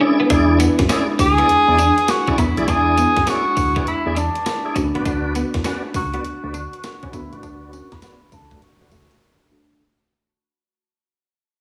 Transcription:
Already playing: tine electric piano G#3 D4 E4 A#4 B4
0.00 clean electric guitar C#4, tonewheel organ E4 G#4 D5
0.20 clean electric guitar B3
0.30 fm bass E2, tine electric piano G#3 D4 E4 B4, clean electric guitar D4, tonewheel organ E4 G#4 D5, kick, closed hi-hat, tambourine
0.60 clean electric guitar B3, closed hi-hat, tambourine
0.79 fm bass F#2, muted clean electric guitar stroke, kick, snare, closed hi-hat
0.89 clean electric guitar C#4, tonewheel organ E4 G#4 D5, snare, closed hi-hat, tambourine
1.19 fm bass D2, tenor saxophone G#4, muted clean electric guitar stroke, kick, open hi-hat, tambourine
1.38 clean electric guitar B3, tonewheel organ E4 G#4 D5, closed hi-hat
1.49 fm bass E2, closed hi-hat
1.68 fm bass E2, tonewheel organ E4 G#4 D5
1.79 clean electric guitar D4, closed hi-hat, tambourine
1.98 closed hi-hat
2.08 tenor saxophone F#4, muted clean electric guitar stroke, snare, closed hi-hat, tambourine
2.27 clean electric guitar C#4, tonewheel organ E4 G#4 D5, kick
2.38 fm bass E2, clean electric guitar B3, tenor saxophone E4, kick, closed hi-hat, tambourine
2.57 fm bass B1, tonewheel organ E4 G#4 D5, closed hi-hat
2.67 fm bass E2, tine electric piano G#3 D4 E4 B4, clean electric guitar D4, tonewheel organ E4 G#4 D5, tenor saxophone G#4, kick, closed hi-hat, tambourine
2.98 clean electric guitar B3, closed hi-hat, tambourine
3.16 fm bass F#2, muted clean electric guitar stroke, kick, snare, closed hi-hat
3.27 clean electric guitar C#4, tonewheel organ E4 G#4 D5, tenor saxophone F#4, snare, closed hi-hat, tambourine
3.57 fm bass D2, muted clean electric guitar stroke, kick, open hi-hat, tambourine
3.76 clean electric guitar B3, tonewheel organ E4 G#4 D5, kick, closed hi-hat
3.87 fm bass E2, tenor saxophone E4, closed hi-hat
4.06 fm bass E2, tonewheel organ E4 G#4 D5
4.16 clean electric guitar D4, tenor saxophone D4, closed hi-hat, tambourine
4.35 closed hi-hat
4.46 muted clean electric guitar stroke, snare, closed hi-hat, tambourine
4.65 tonewheel organ E4 G#4 D5
4.75 fm bass D2, tine electric piano A3 D4 F#4 A#4, clean electric guitar C#4, kick, closed hi-hat, tambourine
4.84 tine electric piano B4
4.95 fm bass A1, clean electric guitar B3, tonewheel organ F#4 B4 D5, closed hi-hat
5.05 fm bass D2, clean electric guitar D4, tonewheel organ F#4 B4 D5, kick, closed hi-hat, tambourine
5.35 clean electric guitar B3, closed hi-hat, tambourine
5.54 fm bass E2, muted clean electric guitar stroke, kick, snare, closed hi-hat
5.64 clean electric guitar C#4, tonewheel organ F#4 B4 D5, snare, closed hi-hat, tambourine
5.94 fm bass C#2, tenor saxophone F#4, muted clean electric guitar stroke, kick, open hi-hat, tambourine
6.14 clean electric guitar B3, tonewheel organ F#4 B4 D5, closed hi-hat
6.25 fm bass D2, closed hi-hat
6.43 fm bass D2, tonewheel organ F#4 B4 D5
6.54 clean electric guitar D4, closed hi-hat, tambourine
6.73 closed hi-hat
6.83 tenor saxophone F#4, muted clean electric guitar stroke, snare, closed hi-hat, tambourine
7.03 clean electric guitar C#4, tonewheel organ F#4 B4 D5, kick
7.13 fm bass D2, tine electric piano A3 D4 F#4 A#4, clean electric guitar B3, tenor saxophone E4, kick, closed hi-hat, tambourine
7.21 tine electric piano B4
7.32 fm bass A1, tonewheel organ F#4 B4 D5, tenor saxophone F#4, closed hi-hat
7.43 fm bass D2, clean electric guitar D4, tonewheel organ F#4 B4 D5, kick, closed hi-hat, tambourine
7.73 clean electric guitar C#4, closed hi-hat, tambourine
7.92 fm bass E2, tenor saxophone B4, muted clean electric guitar stroke, kick, snare, closed hi-hat
8.02 clean electric guitar B3, tonewheel organ F#4 B4 D5, snare, closed hi-hat, tambourine
8.32 fm bass C#2, tenor saxophone A4, muted clean electric guitar stroke, kick, open hi-hat, tambourine
8.51 clean electric guitar A3, tonewheel organ F#4 B4 D5, kick, closed hi-hat
8.62 fm bass D2, tenor saxophone F#4, closed hi-hat
8.81 fm bass D2, tonewheel organ F#4 B4 D5
8.92 clean electric guitar A3, kick, closed hi-hat, tambourine
9.11 closed hi-hat
9.51 tine electric piano A3 D4 F#4 A4

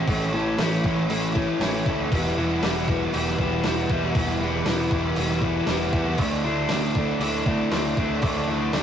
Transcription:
0.07 picked electric bass A1, overdriven electric guitar A2 E3 A3 C#4 E4, kick, crash
0.33 picked electric bass A1, overdriven electric guitar A3 C#4 E4
0.58 picked electric bass A1, overdriven electric guitar E3 A3 C#4 E4, snare, crash
0.83 picked electric bass A1, overdriven electric guitar A3 C#4 E4, kick
1.09 picked electric bass A1, overdriven electric guitar A2 E3 A3 C#4 E4, crash
1.35 overdriven electric guitar A3 C#4 E4, kick
1.60 picked electric bass A1, overdriven electric guitar E3 A3 C#4, snare, crash
1.65 overdriven electric guitar E4
1.86 picked electric bass D2, overdriven electric guitar A3 C#4 E4, kick
2.11 picked electric bass E1, overdriven electric guitar E3 G3 B3 E4, kick, crash
2.37 picked electric bass E1, overdriven electric guitar G3 B3 E4
2.63 picked electric bass E1, overdriven electric guitar E3 G3 B3 E4, snare, crash
2.88 overdriven electric guitar G3 B3 E4, kick
3.14 picked electric bass E1, overdriven electric guitar E3 G3 B3 E4, crash
3.27 snare
3.39 picked electric bass E1, overdriven electric guitar G3 B3 E4, kick
3.64 picked electric bass E1, overdriven electric guitar E3 G3 B3, snare, crash
3.68 overdriven electric guitar E4
3.89 picked electric bass E1, overdriven electric guitar B3 E4, kick
3.94 overdriven electric guitar G3
4.03 snare
4.15 picked electric bass E1, overdriven electric guitar E3 G3 B3, kick, crash
4.19 overdriven electric guitar E4
4.39 picked electric bass E1, overdriven electric guitar B3 E4
4.44 overdriven electric guitar G3
4.65 picked electric bass E1, overdriven electric guitar E3 G3 B3, snare, crash
4.70 overdriven electric guitar E4
4.91 picked electric bass E1, overdriven electric guitar B3 E4, kick
4.95 overdriven electric guitar G3
5.15 picked electric bass E1, overdriven electric guitar E3 G3 B3, crash
5.20 overdriven electric guitar E4
5.29 snare
5.42 overdriven electric guitar G3 B3 E4, kick
5.67 picked electric bass E1, overdriven electric guitar E3 G3 B3 E4, snare, crash
5.92 picked electric bass E2, overdriven electric guitar G3 B3 E4, kick
6.18 picked electric bass D2, overdriven electric guitar D3 A3 D4 E4, kick, crash
6.44 picked electric bass D2, overdriven electric guitar A3 D4 E4
6.69 picked electric bass D2, overdriven electric guitar D3 A3, snare, crash
6.73 overdriven electric guitar D4 E4
6.95 overdriven electric guitar A3 D4 E4, kick
7.20 picked electric bass D2, overdriven electric guitar D3 A3 D4, crash
7.24 overdriven electric guitar E4
7.46 picked electric bass D2, overdriven electric guitar A3 D4 E4, kick
7.72 picked electric bass D2, overdriven electric guitar D3 A3 D4 E4, snare, crash
7.97 picked electric bass D2, overdriven electric guitar A3 D4 E4, kick
8.22 picked electric bass D2, overdriven electric guitar D3 A3 D4 E4, kick, crash
8.48 picked electric bass D2, overdriven electric guitar D4 E4
8.52 overdriven electric guitar A3
8.73 picked electric bass D2, overdriven electric guitar D3 A3 D4 E4, snare, crash

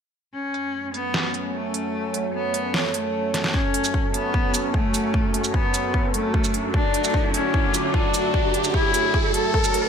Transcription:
0.34 supersaw synth F#2 F#3 A3 C#4, cello C#4, ambient pad F#4
0.54 ambient pad A4, closed hi-hat
0.83 ambient pad C#5
0.94 cello B3, closed hi-hat
1.14 snare
1.30 ambient pad A5
1.34 closed hi-hat
1.54 cello A3
1.74 closed hi-hat
2.14 closed hi-hat
2.34 cello B3
2.54 closed hi-hat
2.74 snare
2.94 cello A3, closed hi-hat
3.34 snare, closed hi-hat
3.44 snare
3.54 supersaw synth F#2 F#3 A3 C#4, cello C#4, kick, riser
3.74 closed hi-hat
3.84 shaker
3.94 kick
4.14 cello B3, closed hi-hat
4.34 kick
4.54 closed hi-hat, shaker
4.74 cello A3, kick
4.94 closed hi-hat, shaker
5.14 kick
5.34 closed hi-hat
5.44 shaker
5.54 cello B3, kick
5.74 closed hi-hat, shaker
5.94 kick
6.14 cello A3, closed hi-hat
6.34 kick
6.44 shaker
6.54 closed hi-hat
6.74 supersaw synth D3, cello D4, kick
6.89 ambient pad D6
6.94 closed hi-hat
7.04 shaker
7.14 kick
7.34 cello C#4, closed hi-hat
7.54 kick
7.74 closed hi-hat, shaker
7.94 cello D4, kick
8.14 closed hi-hat, shaker
8.34 kick
8.54 closed hi-hat
8.64 shaker
8.74 cello E4, kick
8.94 closed hi-hat, shaker
9.14 kick
9.34 cello A4, closed hi-hat
9.54 kick
9.64 shaker
9.74 closed hi-hat

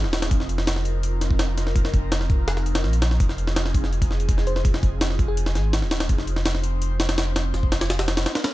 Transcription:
Already playing: analog synth pad C4 D#4 F4 G#4
0.04 sub bass D#1, snare
0.13 snare, closed hi-hat
0.22 snare, closed hi-hat
0.31 sub bass F1, analog synth pad A#4, kick, closed hi-hat
0.40 snare
0.49 closed hi-hat
0.58 snare
0.67 snare, closed hi-hat
0.76 snare
0.85 closed hi-hat
1.03 closed hi-hat
1.21 snare, closed hi-hat
1.31 kick
1.39 snare, closed hi-hat
1.58 snare, closed hi-hat
1.67 snare
1.76 sub bass F1, kick, closed hi-hat
1.85 snare
1.94 kick, closed hi-hat
2.12 snare, closed hi-hat
2.21 snare
2.30 kick, closed hi-hat
2.48 snare, closed hi-hat
2.57 snare
2.66 closed hi-hat
2.75 snare, closed hi-hat
2.84 sub bass A#1, snare
2.93 closed hi-hat
3.02 snare, closed hi-hat
3.11 snare
3.20 sub bass F1, analog synth pad G#4, kick, closed hi-hat
3.29 snare
3.38 closed hi-hat
3.47 snare
3.56 snare, closed hi-hat
3.66 snare
3.75 kick, closed hi-hat
3.84 snare
3.93 closed hi-hat
4.02 kick, closed hi-hat
4.11 snare
4.20 closed hi-hat
4.29 kick, closed hi-hat
4.38 snare
4.47 fm electric piano C5, closed hi-hat
4.56 fm electric piano C5, snare
4.65 sub bass F1, kick, closed hi-hat
4.74 snare
4.83 kick, closed hi-hat
5.01 snare, closed hi-hat
5.10 snare
5.19 kick, closed hi-hat
5.28 fm electric piano G#4
5.37 closed hi-hat
5.46 snare
5.55 sub bass G#1, snare, closed hi-hat
5.73 snare, closed hi-hat
5.82 sub bass D#1, snare
5.91 snare, closed hi-hat
6.00 snare, closed hi-hat
6.09 sub bass F1, analog synth pad C5, kick, closed hi-hat
6.18 snare
6.27 closed hi-hat
6.36 snare
6.46 snare, closed hi-hat
6.55 snare
6.64 closed hi-hat
6.82 closed hi-hat
7.00 snare, closed hi-hat
7.09 snare, closed hi-hat
7.18 snare, closed hi-hat
7.36 snare, closed hi-hat
7.54 sub bass F1, snare, closed hi-hat
7.63 kick
7.72 snare, closed hi-hat
7.81 snare, closed hi-hat
7.90 snare, closed hi-hat
7.99 snare, closed hi-hat
8.08 snare, closed hi-hat
8.17 snare, closed hi-hat
8.26 snare, closed hi-hat
8.35 snare, closed hi-hat
8.44 snare, closed hi-hat

